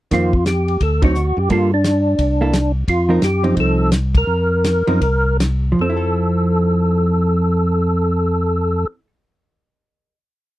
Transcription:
0.11 F2 D#3 A#3 C4 F4, kick, snare, ride
0.33 kick
0.46 G4, snare, hi-hat pedal, ride
0.68 ride
0.80 D2 A4, kick, ride
1.02 D3 F#3 C4 D#4 F#4, kick, ride
1.15 hi-hat pedal
1.37 F#2 G4
1.49 G2 G3 A#3 F4 A4, kick, ride
1.74 D4
1.84 snare, hi-hat pedal, ride
2.19 C2, kick, ride
2.41 A#3 E4 A4
2.53 snare, hi-hat pedal, ride
2.88 F2 F4, kick, ride
3.09 F3 C4 D#4 A#4
3.22 F#2 G4, snare, hi-hat pedal, ride
3.44 F3 C4 D#4, ride
3.57 C2 A4, kick, ride
3.92 snare, hi-hat pedal, ride
4.15 A#4, kick, ride
4.27 F2
4.64 snare, hi-hat pedal, ride
4.87 F#2 F3 C4 D#4 A#4, ride
5.01 C2, kick, ride
5.40 snare, hi-hat pedal, ride
5.72 F3
5.79 F2 C4 A4
5.90 E4
5.97 A4

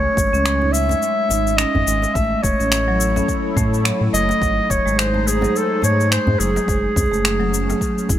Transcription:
Already playing: G#3 C#4 C#5
0.16 G#1, kick, djembe tone, cabasa
0.33 C#2 C#4, cabasa
0.46 finger snap, cabasa
0.61 D#4, djembe tone
0.72 E5, cabasa
0.89 G#3, djembe slap, djembe tone, cabasa
1.02 cabasa
1.29 G#1 D#4, djembe tone, cabasa
1.47 cabasa
1.57 C#4 D#5, finger snap, cabasa
1.75 G#1, djembe bass
1.87 G#1 G#3, cabasa
2.02 djembe slap, cabasa
2.14 A1 A3 E5, kick, cabasa
2.33 C#5
2.42 E1 E4 C#5, kick, cabasa
2.55 A4
2.60 A1 C#4, cabasa
2.72 finger snap, cabasa
2.88 F#3
3.00 cabasa
3.16 C#4, djembe slap, djembe tone, cabasa
3.28 kick, cabasa
3.56 A2 A3, kick, djembe bass, cabasa
3.74 cabasa
3.85 F#3, finger snap, cabasa
4.01 A2
4.13 F#1 A3 D#5, cabasa
4.29 djembe slap, cabasa
4.41 G#1 F#3, kick, cabasa
4.46 D#4
4.59 G#4
4.64 C5
4.70 D#1 C#5, kick, djembe tone, cabasa
4.86 G#1 G#3, cabasa
4.99 C5, finger snap, cabasa
5.14 A3, djembe tone
5.27 G#4, cabasa
5.41 F#3, djembe slap, djembe tone, cabasa
5.56 A4, cabasa
5.82 G#2 A3 C#5, djembe tone, cabasa
6.00 cabasa
6.11 G#3 C5, finger snap, cabasa
6.27 G#2, djembe bass
6.39 F#1 F#3 G#4, cabasa
6.56 djembe slap, cabasa
6.67 F#1 F#3 G#3, kick, cabasa
6.96 C#2 C#4, kick, djembe tone, djembe bass, cabasa
7.11 F#1 A3, cabasa
7.25 finger snap, cabasa
7.40 F#3, djembe tone
7.54 cabasa
7.69 A3, djembe slap, djembe tone, cabasa
7.81 kick, cabasa
7.98 cabasa
8.09 F#1 E4, kick, djembe bass, cabasa

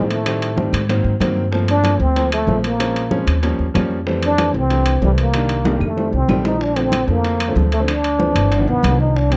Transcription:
Already playing: A2 D#3 F3 G#3 A#3 C4
0.09 A3, high bongo, high conga, high timbale
0.25 D#3 G3 A3 C4, high bongo, high conga, high timbale, claves
0.42 high conga, high timbale
0.56 D#3 G3 A3 C4, high bongo, high conga
0.73 G#2, high bongo, high conga, high timbale, claves
0.89 D#3 F#3 A#3 C4, high bongo, high conga, high timbale
1.04 G#2, high bongo, high conga
1.20 G2 D#3 F#3 A#3 C4, high bongo, low bongo, high conga, high timbale, claves
1.37 high bongo, high conga
1.52 F3 A3 A#3 C4, high bongo, high conga
1.68 D4, high conga, high timbale
1.84 F3 A3 A#3 C4, high bongo, high conga, high timbale, claves
2.00 D2 C4, high bongo, high conga
2.16 F3 A3 A#3 C4, high bongo, high conga, high timbale
2.32 A3, high bongo, high conga, high timbale, claves
2.47 A#1 F3 A3 A#3 C4, high bongo, low bongo, high conga
2.64 A#3, high bongo, high conga, high timbale
2.79 F3 G#3 C4 C#4, high bongo, high conga, high timbale, claves
2.95 high conga, high timbale
3.11 F3 G#3 C4 C#4, high bongo, high conga
3.27 D#2, high bongo, high conga, high timbale, claves
3.43 F3 G3 A#3 C#4, high bongo, high conga, high timbale
3.59 D#2, high bongo, high conga
3.74 F2 F3 G3 A#3 C#4, high bongo, low bongo, high conga, high timbale, claves
3.91 high bongo, high conga
4.07 E3 G3 A3 C4, high bongo, high conga
4.23 D4, high conga, high timbale
4.38 E3 G3 A3 C4, high bongo, high conga, high timbale, claves
4.54 C2 C4, high bongo, high conga
4.70 E3 G3 A3 D4, high bongo, high conga, high timbale
4.86 high bongo, high conga, high timbale, claves
5.02 C2 E3 G3 A3 C4, high bongo, low bongo, high conga
5.18 A#3, high bongo, high timbale
5.34 D#3 G3 A#3 D4, high bongo, high conga, high timbale, claves
5.49 high conga, high timbale
5.65 D#3 G3 A#3 D4, high bongo, high conga, high timbale
5.80 F2, high conga, claves
5.85 A3
5.96 D#3 G3 A3 C4, high conga, low timbale
6.12 C2 C4, high conga
6.28 A#1 D#3 G3 A3 C4, low bongo, high conga, low timbale, claves
6.45 D#4, low bongo, high conga, low timbale
6.60 D4, high bongo, high conga
6.76 D3 F3 A3 C4, high conga, high timbale
6.92 high bongo, high conga, high timbale, claves
7.08 F2 D3 F3 A3 A#3 C4, high bongo, high conga
7.24 high bongo, high conga, high timbale
7.40 high bongo, high conga, high timbale, claves
7.47 D3 F3 A3 C4
7.56 D2, high bongo, low bongo, high conga
7.72 A3, high bongo, high conga, high timbale
7.79 D3 F3 A3 C4
7.88 D4, high bongo, high conga, high timbale, claves
8.04 high conga, high timbale
8.19 E3 F3 A3 C4, high bongo, high conga
8.35 G1, high bongo, high conga, high timbale, claves
8.51 high bongo, high conga, high timbale
8.58 D#3 F3 B3 D4
8.67 B1 B3, high bongo, high conga
8.83 C2, high bongo, low bongo, high conga, high timbale, claves
8.90 D#3 F3 B3 D4
8.99 D#4, high bongo, high conga
9.15 D4, high bongo, high conga
9.30 D#3 G3 A#3 C4 D4, high conga, high timbale

